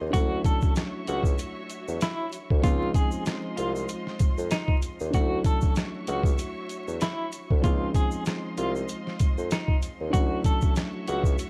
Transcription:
Already playing: upright piano C4 D#4, string section F4 C5 D#5 C6
0.00 bassoon D#2
0.10 bassoon D2, upright piano F#3 D4, clean electric guitar F#4, kick, closed hi-hat
0.14 upright piano A3 C#4, string section F#4 C#5 E5 C#6, shaker
0.19 upright piano E4
0.44 clean electric guitar A4, kick, closed hi-hat, shaker
0.61 kick, shaker
0.76 cross-stick, snare, closed hi-hat, shaker
1.07 bassoon C#2, clean electric guitar F#4, closed hi-hat, shaker
1.24 kick, shaker
1.38 closed hi-hat, shaker
1.70 closed hi-hat, shaker
1.88 bassoon E2, shaker
2.01 clean electric guitar E4, cross-stick, snare, closed hi-hat, shaker
2.32 closed hi-hat, shaker
2.50 bassoon D2, kick
2.60 upright piano F3 C#4, clean electric guitar F4, closed hi-hat
2.64 bassoon C#2, upright piano G#3 C4, string section F4 C5 D#5 C6, kick, shaker
2.69 upright piano D#4
2.94 clean electric guitar G#4, kick, closed hi-hat, shaker
3.11 shaker
3.26 cross-stick, snare, closed hi-hat, shaker
3.57 bassoon C2, clean electric guitar F4, closed hi-hat, shaker
3.76 shaker
3.88 closed hi-hat, shaker
4.07 snare
4.19 kick, closed hi-hat, shaker
4.38 bassoon F2, shaker
4.51 clean electric guitar D#4, cross-stick, snare, closed hi-hat, shaker
4.68 kick
4.82 closed hi-hat, shaker
5.00 bassoon D#2, shaker
5.10 bassoon D2, upright piano F#3 D4, string section F#4 C#5 E5 C#6, kick, closed hi-hat, shaker
5.14 upright piano A3 C#4, clean electric guitar F#4
5.19 upright piano E4
5.44 clean electric guitar A4, kick, closed hi-hat, shaker
5.61 kick, shaker
5.75 cross-stick, snare, closed hi-hat, shaker
6.07 bassoon C#2, clean electric guitar F#4, closed hi-hat, shaker
6.23 kick, shaker
6.38 closed hi-hat, shaker
6.69 closed hi-hat, shaker
6.88 bassoon E2, shaker
7.01 clean electric guitar E4, cross-stick, snare, closed hi-hat, shaker
7.32 closed hi-hat, shaker
7.50 bassoon D2, kick
7.60 upright piano F3 C#4, closed hi-hat
7.64 bassoon C#2, upright piano G#3 C4, clean electric guitar F4, string section F4 C5 D#5 C6, kick, shaker
7.69 upright piano D#4
7.94 clean electric guitar G#4, kick, closed hi-hat, shaker
8.11 shaker
8.25 cross-stick, snare, closed hi-hat, shaker
8.58 bassoon C2, clean electric guitar F4, closed hi-hat, shaker
8.76 shaker
8.88 closed hi-hat, shaker
9.07 snare
9.19 kick, closed hi-hat, shaker
9.38 bassoon F2, shaker
9.51 clean electric guitar D#4, cross-stick, snare, closed hi-hat, shaker
9.68 kick
9.82 closed hi-hat, shaker
10.00 bassoon D#2
10.10 bassoon D2, upright piano F#3 D4, clean electric guitar F#4, kick, closed hi-hat, shaker
10.14 upright piano A3 C#4, string section F#4 C#5 E5 C#6
10.19 upright piano E4
10.44 clean electric guitar A4, kick, closed hi-hat, shaker
10.61 kick, shaker
10.76 cross-stick, snare, closed hi-hat, shaker
11.07 bassoon C#2, clean electric guitar F#4, closed hi-hat, shaker
11.23 kick, shaker
11.38 closed hi-hat, shaker

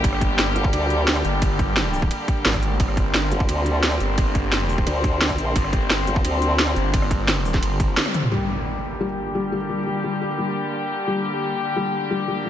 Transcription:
Already playing: string section D3 G3 A#3 G4
0.04 detuned saw bass G1, kick, closed hi-hat, ride bell
0.13 cross-stick
0.21 kick, closed hi-hat
0.38 detuned saw bass G1, snare, closed hi-hat, ride bell
0.56 wobble bass G1, closed hi-hat
0.64 kick
0.73 wobble bass D2, closed hi-hat, ride bell
0.90 closed hi-hat
1.08 snare, closed hi-hat, ride bell
1.16 cross-stick, closed hi-hat
1.25 detuned saw bass G1, closed hi-hat
1.42 kick, closed hi-hat, ride bell
1.59 kick, closed hi-hat
1.76 snare, closed hi-hat, ride bell
1.94 open hi-hat
2.02 kick
2.11 closed hi-hat, ride bell
2.28 kick, closed hi-hat
2.45 detuned saw bass G#1, snare, closed hi-hat, ride bell
2.54 kick, cross-stick, closed hi-hat
2.63 closed hi-hat
2.80 detuned saw bass G1, string section C4, kick, closed hi-hat, ride bell
2.88 cross-stick
2.97 kick, closed hi-hat
3.14 detuned saw bass G1, snare, closed hi-hat, ride bell
3.32 wobble bass G1, closed hi-hat
3.40 kick
3.49 wobble bass D2, closed hi-hat, ride bell
3.66 closed hi-hat
3.83 snare, closed hi-hat, ride bell
3.92 cross-stick, closed hi-hat
4.00 detuned saw bass G1, closed hi-hat
4.18 kick, closed hi-hat, ride bell
4.35 kick, closed hi-hat
4.52 snare, closed hi-hat, ride bell
4.69 open hi-hat
4.78 kick
4.87 wobble bass D2, closed hi-hat, ride bell
5.04 kick, closed hi-hat
5.21 snare, closed hi-hat, ride bell
5.30 kick, cross-stick, closed hi-hat
5.38 wobble bass A#1, closed hi-hat
5.56 detuned saw bass G1, kick, closed hi-hat, ride bell
5.64 cross-stick
5.73 kick, closed hi-hat
5.90 detuned saw bass G1, snare, closed hi-hat, ride bell
6.07 wobble bass G1, closed hi-hat
6.16 kick
6.25 wobble bass D2, closed hi-hat, ride bell
6.42 closed hi-hat
6.59 snare, closed hi-hat, ride bell
6.68 cross-stick, closed hi-hat
6.76 detuned saw bass G1, closed hi-hat
6.94 kick, closed hi-hat, ride bell
7.02 cross-stick
7.11 kick, closed hi-hat
7.28 snare, closed hi-hat, ride bell
7.45 open hi-hat
7.54 kick, snare, closed hi-hat
7.63 detuned saw bass G1, closed hi-hat, ride bell
7.80 kick, closed hi-hat
7.97 snare, closed hi-hat, ride bell
8.06 cross-stick, closed hi-hat, high tom
8.14 closed hi-hat, mid tom
8.23 mid tom
8.32 string section D3 G3 A#3 G4, felt piano G3, impact
9.00 felt piano G3
9.35 felt piano G3
9.52 felt piano G3
9.70 felt piano G3
9.87 felt piano G3
10.04 felt piano G3
10.21 felt piano G4
10.38 felt piano G3
11.07 felt piano G3
11.76 felt piano G3
12.11 felt piano G3
12.28 felt piano G3
12.45 felt piano G3

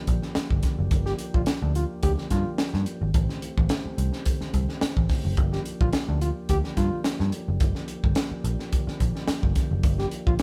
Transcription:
Already playing: tonewheel organ F3 A#3 D4 G4
0.07 picked electric bass A#1, kick, closed hi-hat
0.22 snare
0.35 muted picked electric bass stroke, snare, closed hi-hat
0.51 picked electric bass G1, kick
0.63 kick, snare, closed hi-hat
0.79 picked electric bass F#1
0.91 picked electric bass G1, kick, closed hi-hat
1.06 trombone G4, snare
1.19 closed hi-hat
1.34 picked electric bass A#1, trombone F4, kick
1.46 muted picked electric bass stroke, snare, closed hi-hat
1.62 picked electric bass D2, trombone D4
1.75 trombone F4, closed hi-hat
2.03 picked electric bass D2, trombone G4, kick, closed hi-hat
2.18 snare
2.30 picked electric bass G2, trombone F4, kick, snare, closed hi-hat
2.58 snare, closed hi-hat
2.73 picked electric bass G2, snare
2.86 closed hi-hat
3.01 picked electric bass G#1
3.14 picked electric bass A1, tonewheel organ E3 A3 C4 G4, kick, closed hi-hat
3.29 snare
3.42 closed hi-hat
3.58 picked electric bass A1, kick
3.69 snare, closed hi-hat
3.85 muted picked electric bass stroke
3.98 picked electric bass C2, closed hi-hat
4.13 snare
4.26 kick, closed hi-hat
4.41 muted picked electric bass stroke, snare
4.54 picked electric bass C2, kick, closed hi-hat
4.69 snare
4.81 muted picked electric bass stroke, snare, closed hi-hat
4.97 picked electric bass A1, kick
5.09 kick, snare, open hi-hat
5.25 picked electric bass F#1
5.37 picked electric bass G1, tonewheel organ F3 A#3 D4, kick, closed hi-hat
5.52 trombone G4, snare
5.65 closed hi-hat
5.81 picked electric bass A#1, trombone F4, kick
5.93 muted picked electric bass stroke, snare, closed hi-hat
6.08 picked electric bass D2, trombone D4
6.21 trombone F4, closed hi-hat
6.49 picked electric bass D2, trombone G4, kick, closed hi-hat
6.64 snare
6.77 picked electric bass G2, trombone F4, kick, snare, closed hi-hat
7.04 snare, closed hi-hat
7.20 picked electric bass G2, snare
7.32 closed hi-hat
7.48 picked electric bass F#1
7.60 picked electric bass G1, kick, closed hi-hat
7.75 snare
7.88 closed hi-hat
8.04 picked electric bass G1, kick
8.15 snare, closed hi-hat
8.31 muted picked electric bass stroke
8.44 picked electric bass A#1, closed hi-hat
8.59 snare
8.72 kick, closed hi-hat
8.87 muted picked electric bass stroke, snare
9.00 picked electric bass A#1, kick, closed hi-hat
9.16 snare
9.28 muted picked electric bass stroke, snare, closed hi-hat
9.43 picked electric bass G1, kick
9.55 kick, snare, closed hi-hat
9.71 picked electric bass F#1
9.83 picked electric bass G1, kick, closed hi-hat
9.99 trombone G4, snare
10.11 closed hi-hat
10.26 picked electric bass A#1, trombone F4, kick
10.39 closed hi-hat

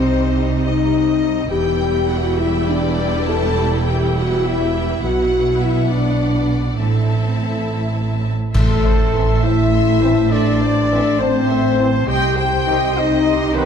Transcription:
Already playing: double bass section C2, cello section C3, viola section G3 D#4, french horn section C4, violin section C5 D#5
0.62 french horn section D#4, violin section D#5
1.50 double bass section E1, cello section E2, viola section G3 E4, french horn section G4, violin section B4 G5
2.09 french horn section F#4, violin section F#5
2.39 french horn section E4, violin section E5
2.68 french horn section D4, violin section D5
3.27 french horn section A4, violin section A5
3.87 french horn section G4, violin section G5
4.15 french horn section F#4, violin section F#5
4.45 french horn section E4, violin section E5
5.03 double bass section B1, cello section B2, viola section B3, french horn section F#4, violin section B4 F#5
5.61 french horn section E4, violin section E5
5.91 french horn section D4, viola section D4, violin section D5
6.78 double bass section A1, cello section A2, french horn section A3, viola section C4 E4, violin section A4 E5 A5
8.54 double bass section A1, timpani A2, cello section A2, french horn section A3, violin section A4 C6, trumpet section A4, flute A4, viola section A4 E5, concert bass drum, crash
8.84 viola section C5, violin section A5
9.13 trombone section E3 C4, viola section A4 E5, violin section C6
9.42 french horn section E4, viola section C5, violin section E5 A5, flute E5, trumpet section E5
9.72 viola section A4 E5, violin section C6
10.01 trombone section E3 C4, viola section C5, violin section A5
10.30 french horn section D4, viola section A4 E5, flute D5, trumpet section D5, violin section D5 C6
10.60 viola section C5, violin section A5
10.90 trombone section E3 C4, viola section A4 E5, violin section C6
11.18 french horn section C4, viola section C5, violin section C5 A5, trumpet section C5, flute D5
11.23 flute C5
11.47 viola section A4 E5, violin section C6
11.78 trombone section E3 C4, viola section C5, violin section A5
12.07 double bass section C2, cello section C3, viola section G4 D#5, french horn section G4, flute G5, violin section G5 C6, trumpet section G5
12.37 french horn section G4, viola section C5, flute G5, violin section G5, trumpet section G5
12.66 trombone section D#3 C4, viola section G4 D#5, violin section C6
12.95 french horn section D#4, viola section C5, flute D#5, violin section D#5 G5, trumpet section D#5
13.25 viola section G4 D#5, violin section C6
13.54 trombone section D#3 C4, french horn section B3, violin section B4 G5, flute B4, trumpet section B4, viola section C5

